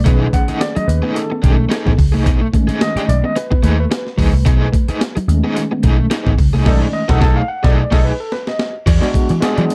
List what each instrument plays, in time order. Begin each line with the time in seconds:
0.04 picked electric bass B1, tine electric piano D#3 A3 C#4 G#4 B4, overdriven electric guitar A3 D#4 G#4, clean electric guitar B3, kick, closed hi-hat
0.23 muted clean electric guitar stroke
0.33 clean electric guitar A3, tine electric piano F#5, muted overdriven electric guitar stroke, kick, closed hi-hat
0.48 overdriven electric guitar A3 D#4 G#4, muted picked electric bass stroke, closed hi-hat
0.61 tine electric piano D5, muted overdriven electric guitar stroke, snare, closed hi-hat
0.75 clean electric guitar F#3, tine electric piano D#5, muted overdriven electric guitar stroke, muted picked electric bass stroke, closed hi-hat
0.88 picked electric bass D#2, tine electric piano B4, muted clean electric guitar stroke, closed hi-hat
1.02 overdriven electric guitar A3 D#4 G#4, clean electric guitar B3
1.15 tine electric piano A4, muted clean electric guitar stroke, snare, closed hi-hat
1.30 clean electric guitar B3, muted overdriven electric guitar stroke
1.42 picked electric bass B1, tine electric piano D#3 G#3 A3 C#4, overdriven electric guitar A3 D#4 G#4, clean electric guitar A3, kick, closed hi-hat
1.57 muted overdriven electric guitar stroke
1.69 overdriven electric guitar A3 D#4 G#4, snare, closed hi-hat
1.86 picked electric bass A1, clean electric guitar B3, kick, snare
1.97 picked electric bass C#2, muted overdriven electric guitar stroke, muted clean electric guitar stroke, kick, open hi-hat
2.12 picked electric bass C2, clean electric guitar A3, overdriven electric guitar A3 D#4 G#4
2.26 picked electric bass B1, overdriven electric guitar A3 D#4 G#4, clean electric guitar B3, kick, closed hi-hat
2.41 muted overdriven electric guitar stroke
2.53 tine electric piano D#3 G#3 A3 C#4, clean electric guitar A3, muted overdriven electric guitar stroke, kick, closed hi-hat
2.68 overdriven electric guitar A3 D#4 G#4, muted picked electric bass stroke, muted clean electric guitar stroke, closed hi-hat
2.81 clean electric guitar A3, tine electric piano D#5, muted overdriven electric guitar stroke, snare, closed hi-hat
2.96 overdriven electric guitar A3 D#4 G#4, muted picked electric bass stroke, closed hi-hat
3.09 picked electric bass B1, tine electric piano D5, muted clean electric guitar stroke, muted overdriven electric guitar stroke, closed hi-hat
3.24 clean electric guitar B3, tine electric piano D#5, muted overdriven electric guitar stroke
3.36 tine electric piano B4, muted overdriven electric guitar stroke, muted clean electric guitar stroke, snare, closed hi-hat
3.51 clean electric guitar B3, muted overdriven electric guitar stroke, kick
3.63 picked electric bass D#2, clean electric guitar A3, overdriven electric guitar A3 D#4 G#4, tine electric piano B4, closed hi-hat
3.79 tine electric piano B4, muted overdriven electric guitar stroke
3.90 muted clean electric guitar stroke, muted overdriven electric guitar stroke, snare, closed hi-hat
4.07 snare
4.18 picked electric bass D2, clean electric guitar F#3, overdriven electric guitar A3 D#4 G#4, kick, open hi-hat
4.33 picked electric bass C2, clean electric guitar A3, muted overdriven electric guitar stroke
4.45 picked electric bass B1, overdriven electric guitar A3 D#4 G#4, clean electric guitar B3, kick, closed hi-hat
4.61 muted clean electric guitar stroke
4.72 clean electric guitar A3, muted overdriven electric guitar stroke, kick, closed hi-hat
4.88 overdriven electric guitar A3 D#4 G#4, muted picked electric bass stroke, closed hi-hat
5.01 muted overdriven electric guitar stroke, snare, closed hi-hat
5.16 clean electric guitar F#3, muted overdriven electric guitar stroke, muted picked electric bass stroke, closed hi-hat
5.28 picked electric bass D#2, tine electric piano D#3 G#3 A3 C#4, muted clean electric guitar stroke, closed hi-hat
5.44 overdriven electric guitar A3 D#4 G#4, clean electric guitar B3
5.56 muted clean electric guitar stroke, snare, closed hi-hat
5.71 clean electric guitar B3, muted overdriven electric guitar stroke
5.83 picked electric bass B1, overdriven electric guitar A3 D#4 G#4, clean electric guitar A3, kick, closed hi-hat
5.99 muted overdriven electric guitar stroke
6.10 overdriven electric guitar A3 D#4 G#4, snare, closed hi-hat
6.26 picked electric bass A1, clean electric guitar B3, kick, snare
6.38 picked electric bass C#2, muted overdriven electric guitar stroke, muted clean electric guitar stroke, kick, open hi-hat
6.53 picked electric bass C2, clean electric guitar A3, overdriven electric guitar A3 D#4 G#4
6.65 picked electric bass B1, tine electric piano D#3 G#3 A3 C#4 D5, horn section F#3 D#4 A4, overdriven electric guitar A3 D#4 G#4, kick, snare, crash
6.93 tine electric piano D#5
7.08 picked electric bass B1, horn section F#3 D#4 A4, overdriven electric guitar A3 D#4 G#4, tine electric piano F#5, kick, snare
7.21 picked electric bass B1, horn section F#3 D#4 A4, overdriven electric guitar A3 D#4 G#4, tine electric piano A5, kick, snare
7.36 tine electric piano F5
7.48 tine electric piano F#5
7.63 picked electric bass B1, horn section F#3 D#4 A4, overdriven electric guitar A3 D#4 G#4, tine electric piano D5, kick, snare
7.91 picked electric bass B1, horn section F#3 D#4 A4, overdriven electric guitar A3 D#4 G#4, tine electric piano D#5, kick, snare, crash
8.05 tine electric piano B4
8.20 tine electric piano A4
8.32 tine electric piano B4, snare
8.47 tine electric piano D#5, snare
8.59 snare
8.86 picked electric bass E2, clean electric guitar E3, overdriven electric guitar F#4 G#4 D5, kick, closed hi-hat, crash
9.01 tine electric piano G#3 B3 D4 F#4, closed hi-hat
9.14 clean electric guitar G#3, muted picked electric bass stroke, kick, closed hi-hat
9.29 picked electric bass E3, muted overdriven electric guitar stroke, closed hi-hat
9.40 tine electric piano G#3 B3 D4 G#4, overdriven electric guitar F#4 G#4 D5, muted picked electric bass stroke, snare, closed hi-hat
9.58 picked electric bass E3, clean electric guitar F#3, closed hi-hat
9.70 muted clean electric guitar stroke, muted overdriven electric guitar stroke, closed hi-hat